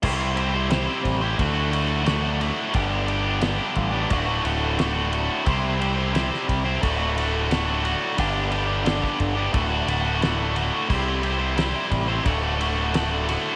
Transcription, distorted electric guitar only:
X:1
M:4/4
L:1/16
Q:1/4=88
K:Dmix
V:1 name="Distorted electric guitar"
[C,G,CEGc]2 [CEGc] [CEGc] [C,G,CEGc] [CEGc]2 [CEGc] [D,,A,,D,A,F] [D,A,F] [A,,D,A,F]2 [D,,A,,D,A,F] [D,A,F] [A,,D,A,F]2 | [G,,D,G,B,DG]2 [G,B,DG] [G,B,DG] [G,,D,G,B,DG] [G,B,DG]2 [G,B,DG] [D,,A,,D,A,F] [D,A,F] [A,,D,A,F]2 [D,,A,,D,A,F] [D,A,F] [A,,D,A,F]2 | [C,G,CEGc]2 [CEGc] [CEGc] [C,G,CEGc] [CEGc]2 [CEGc] [D,,A,,D,A,F] [D,A,F] [A,,D,A,F]2 [D,,A,,D,A,F] [D,A,F] [A,,D,A,F]2 | [G,,D,G,B,DG]2 [G,B,DG] [G,B,DG] [G,,D,G,B,DG] [G,B,DG]2 [G,B,DG] [D,,A,,D,A,F] [D,A,F] [A,,D,A,F]2 [D,,A,,D,A,F] [D,A,F] [A,,D,A,F]2 |
[C,G,CEGc]2 [CEGc] [CEGc] [C,G,CEGc] [CEGc]2 [CEGc] [D,,A,,D,A,F] [D,A,F] [A,,D,A,F]2 [D,,A,,D,A,F] [D,A,F] [A,,D,A,F]2 |]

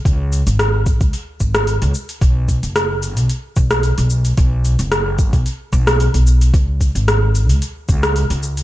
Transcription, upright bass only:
X:1
M:4/4
L:1/16
Q:"Swing 16ths" 1/4=111
K:C#phr
V:1 name="Upright bass" clef=bass
C,,3 G,,,4 C,, z2 G,,,3 C,, z2 | B,,,3 F,,,4 B,,, z2 B,,,3 B,,,3 | B,,,3 F,,,4 B,,, z2 B,,,3 B,,,3 | C,,3 G,,,4 C,, z2 C,,3 C,,3 |]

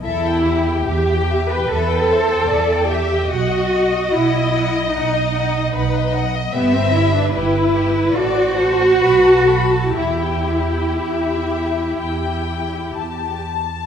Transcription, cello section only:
X:1
M:4/4
L:1/16
Q:1/4=73
K:Em
V:1 name="Cello section"
E4 G3 B A6 G2 | F4 E4 ^D6 z2 | B, C E D E4 F8 | E12 z4 |]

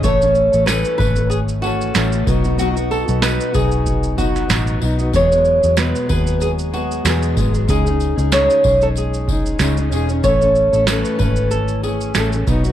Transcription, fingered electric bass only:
X:1
M:4/4
L:1/16
Q:"Swing 16ths" 1/4=94
K:Alyd
V:1 name="Fingered electric bass" clef=bass
A,,,3 A,,,2 z G,,,6 A,,,2 B,,,2- | B,,,3 B,,,2 z B,,,6 A,,,2 B,,,2 | E,,3 E,,2 z D,,6 E,,2 G,,,2 | C,,3 C,,2 z B,,,6 C,,2 E,,,2 |
A,,,3 A,,,2 z G,,,6 A,,,2 B,,,2 |]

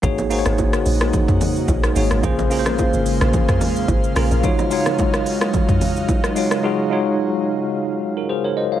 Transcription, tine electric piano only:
X:1
M:4/4
L:1/16
Q:"Swing 16ths" 1/4=109
K:Ebdor
V:1 name="Tine electric piano"
[B,EGAd]2 [B,EGAcd]6 z6 [B,EGAd]2 | [B,DFAc]2 [B,DFABc]6 z6 [B,DFAB]2 | [A,EFGd]2 [A,EFGd]6 z6 [A,EFGd]2 | [A,EFGA]2 [A,EFGd]6 z3 [GB] [Ac] [Bd] [ce] [df] |]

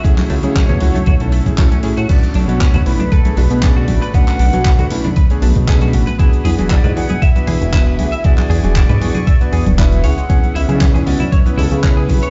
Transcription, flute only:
X:1
M:4/4
L:1/16
Q:"Swing 16ths" 1/4=117
K:Bdor
V:1 name="Flute"
c12- c2 z2 | d2 c4 B2 A2 B2 d4 | f6 z8 z2 | z4 d2 f2 e8 |
d12 e2 f2- | f2 e3/2 d/2 c2 d2 c2 A2 B2 B2 |]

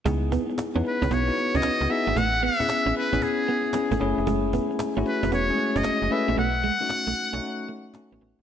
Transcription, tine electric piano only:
X:1
M:4/4
L:1/16
Q:"Swing 16ths" 1/4=114
K:C#m
V:1 name="Tine electric piano"
[B,DEG]3 z2 [B,DEB]3 z [B,DEF]3 z2 [B,DEG]2 | z3 [B,CEG]3 z [B,CEG]3 z2 [B,CEG]2 [A,CEG]2- | [A,CEG]4 z [A,CEF]3 z [G,A,CEG]3 z2 [A,CEB]2 | z3 [A,CDF]3 z [A,CDF]3 z2 [A,CDF]3 z |]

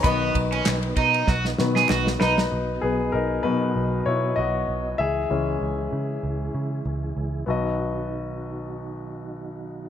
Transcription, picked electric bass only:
X:1
M:4/4
L:1/8
Q:"Swing 16ths" 1/4=97
K:B
V:1 name="Picked electric bass" clef=bass
B,,, B,,, B,,, B,, B,,, B,, B,,, B,,, | B,,, B,,, B,,, B,, B,,, B,, B,,, B,,, | C,, C,, C,, C, C,, C, C,, C,, | B,,,8 |]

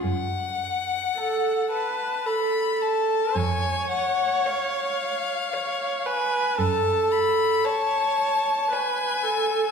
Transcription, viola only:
X:1
M:3/4
L:1/8
Q:1/4=56
K:F#m
V:1 name="Viola"
z2 A B A2 | c4 c B | A2 c2 B A |]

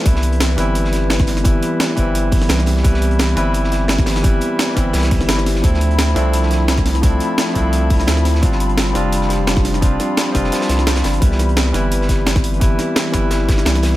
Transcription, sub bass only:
X:1
M:4/4
L:1/16
Q:"Swing 16ths" 1/4=172
K:Gmix
V:1 name="Sub bass" clef=bass
C,,6 G,,,8- G,,,2- | G,,,2 z4 G,,,6 C,,4- | C,,6 G,,,8- G,,,2- | G,,,2 z4 G,,,2 C,,3 G,,, G,,,4 |
D,,6 C,,8- C,,2- | C,,2 z4 C,,6 D,,4 | G,,,6 F,,,8- F,,,2- | F,,,2 z4 F,,,2 z2 C,,4 G,,,2 |
C,,6 G,,,8- G,,,2- | G,,,2 z4 G,,,6 C,,4 |]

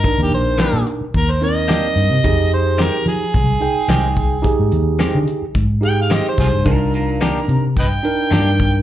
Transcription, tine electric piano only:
X:1
M:4/4
L:1/8
Q:"Swing 16ths" 1/4=109
K:Cm
V:1 name="Tine electric piano"
[DEB]4 z [CEB]3 | [EGA]4 z [EAg]3 | [EGA]4 z [EGA]3 | [DEB]4 z [DEB]3 |]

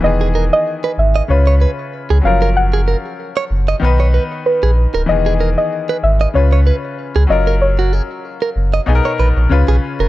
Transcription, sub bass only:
X:1
M:4/4
L:1/16
Q:"Swing 16ths" 1/4=95
K:F#
V:1 name="Sub bass" clef=bass
=E,,,4 z2 G,,,2 C,,3 z2 C,, F,,,2- | F,,,4 z2 F,,,2 B,,,3 z2 A,,,2 C,,, | =E,,,4 z2 G,,,2 C,,3 z2 C,, F,,,2- | F,,,4 z2 F,,,2 B,,, z A,,, A,,, C,, B,,, z E,,, |]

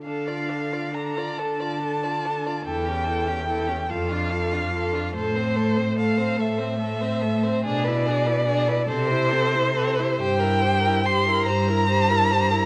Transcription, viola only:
X:1
M:6/8
L:1/16
Q:3/8=48
K:Dm
V:1 name="Viola"
D F D F D F D F D F D F | E ^C E C E C F D F D F D | A, C A, C A, C A, C A, C A, C | D E D E D E C E C E C E |
[K:Cmix] G E G E G E G E G E G E |]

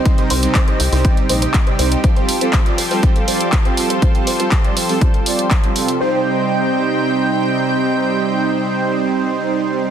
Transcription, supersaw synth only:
X:1
M:4/4
L:1/16
Q:1/4=121
K:Cdor
V:1 name="Supersaw synth"
[C,G,CEc] [C,G,CEB] z [C,G,CEc]2 [C,G,CEe] z [C,G,CEc] [C,G,CEd] [C,G,CEc] [C,G,CEe]2 z [C,G,CEd] [G,CEc]2 | [G,CFA] [G,CFG] z [G,CFA]2 [G,CFd] z [G,CFA] [G,CFc] [G,CFA] [G,CFd]2 z [G,CFc] [G,CFA]2 | [G,CFA] [G,CFG] z [G,CFA]2 [G,CFd] z [G,CFA] [G,CFc] [G,CFA] [G,CFd]2 z [G,CFc] [C,G,CFA]2 | [G,CEc]16- |
[G,CEc]16 |]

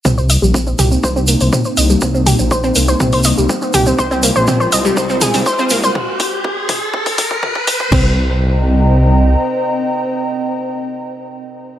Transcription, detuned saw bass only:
X:1
M:4/4
L:1/16
Q:1/4=122
K:Cm
V:1 name="Detuned saw bass" clef=bass
C,,3 B,,,3 C,, z C,,3 C,, z2 C,, z | C,,3 B,,,3 C,, z C,,3 C,, z2 C,, z | C,,3 B,,,3 C,, z C,,3 C,, z2 C,, z | z16 |
C,,12 z4 | z16 |]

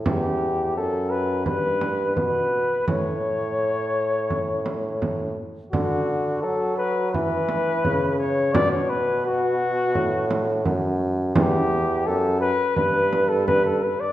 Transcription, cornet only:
X:1
M:4/4
L:1/16
Q:1/4=85
K:D
V:1 name="Cornet"
G4 A2 B2 B4 B4 | c12- c2 z2 | F4 A2 B2 B6 c2 | d c B2 F8- F2 z2 |
G4 A2 B2 B3 A B A B d |]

